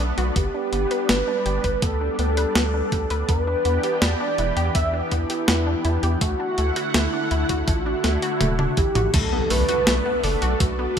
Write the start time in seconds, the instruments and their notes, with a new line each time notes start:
Already playing: analog synth pad A3 B3 D4
0.00 analog synth bass B1
0.18 analog synth bass B1, synth arpeggio sound F#4, closed hi-hat
0.36 analog synth bass G1, analog synth pad G3, synth arpeggio sound B3, soft synth lead G4, kick, closed hi-hat
0.54 synth arpeggio sound D4
0.73 analog synth bass G1, synth arpeggio sound B3, closed hi-hat
0.91 synth arpeggio sound B4, closed hi-hat
1.09 analog synth bass G1, synth arpeggio sound B3, soft synth lead B4, snare, closed hi-hat
1.28 synth arpeggio sound D4
1.46 analog synth bass G1, synth arpeggio sound G4, closed hi-hat
1.64 analog synth bass G1, synth arpeggio sound B4, kick, closed hi-hat
1.82 analog synth bass D2, synth arpeggio sound B3, soft synth lead A4, kick, closed hi-hat
2.01 synth arpeggio sound D4
2.19 analog synth bass D2, synth arpeggio sound B3, soft synth lead A4, closed hi-hat
2.37 synth arpeggio sound B4, closed hi-hat
2.55 analog synth bass D2, synth arpeggio sound B3, snare, closed hi-hat
2.74 synth arpeggio sound D4
2.92 analog synth bass D2, synth arpeggio sound G4, kick, closed hi-hat
3.10 analog synth bass D2, synth arpeggio sound B4, closed hi-hat
3.28 analog synth bass E2, analog synth pad E3 B3 G4, synth arpeggio sound B3, soft synth lead B4, kick, closed hi-hat
3.47 synth arpeggio sound D4
3.65 analog synth bass E2, synth arpeggio sound B3, closed hi-hat
3.83 synth arpeggio sound G4, closed hi-hat
4.01 analog synth bass E2, synth arpeggio sound B3, soft synth lead D5, snare, closed hi-hat
4.20 synth arpeggio sound D4
4.38 analog synth bass E1, synth arpeggio sound E4, closed hi-hat
4.57 analog synth bass E2, synth arpeggio sound G4, closed hi-hat
4.74 analog synth bass E2, synth arpeggio sound B3, soft synth lead E5, kick, closed hi-hat
4.93 synth arpeggio sound D4
5.11 analog synth bass E2, synth arpeggio sound B3, soft synth lead E4, kick, closed hi-hat
5.30 synth arpeggio sound G4, closed hi-hat
5.48 analog synth bass E2, synth arpeggio sound B3, snare, closed hi-hat
5.67 synth arpeggio sound D4
5.85 analog synth bass E2, synth arpeggio sound E4, closed hi-hat
6.03 analog synth bass E2, synth arpeggio sound G4, closed hi-hat
6.21 analog synth bass D2, analog synth pad D3 A3 E4 F#5, synth arpeggio sound A3, soft synth lead F#4, kick, closed hi-hat
6.40 synth arpeggio sound D4
6.58 analog synth bass D2, synth arpeggio sound A3, closed hi-hat
6.76 synth arpeggio sound F#4, closed hi-hat
6.94 analog synth bass D2, synth arpeggio sound A3, soft synth lead E4, snare, closed hi-hat
7.13 synth arpeggio sound D4
7.31 analog synth bass D2, synth arpeggio sound E4, closed hi-hat
7.49 analog synth bass D2, synth arpeggio sound F#4, kick, closed hi-hat
7.68 analog synth bass A1, synth arpeggio sound A3, soft synth lead F#4, kick, closed hi-hat
7.86 synth arpeggio sound D4
8.04 analog synth bass D2, synth arpeggio sound A3, snare, closed hi-hat
8.22 synth arpeggio sound F#4, closed hi-hat
8.41 analog synth bass D1, synth arpeggio sound A3, closed hi-hat, mid tom
8.59 synth arpeggio sound D4, mid tom
8.77 analog synth bass A1, synth arpeggio sound E4, soft synth lead G4, kick, closed hi-hat
8.95 analog synth bass A1, synth arpeggio sound F#4, closed hi-hat, mid tom
9.14 analog synth bass B1, analog synth pad A3 B3 D4, synth arpeggio sound A3, soft synth lead A4, kick, closed hi-hat, crash, impact
9.32 synth arpeggio sound B3
9.50 analog synth bass B1, synth arpeggio sound A3, soft synth lead B4, open hi-hat
9.69 synth arpeggio sound F#4, closed hi-hat
9.87 analog synth bass B1, synth arpeggio sound A3, snare, closed hi-hat
10.06 synth arpeggio sound B3
10.23 analog synth bass F#1, synth arpeggio sound D4, soft synth lead A4, open hi-hat
10.42 analog synth bass B1, synth arpeggio sound F#4, closed hi-hat
10.60 analog synth bass B1, synth arpeggio sound A3, soft synth lead F#4, kick, closed hi-hat
10.79 synth arpeggio sound B3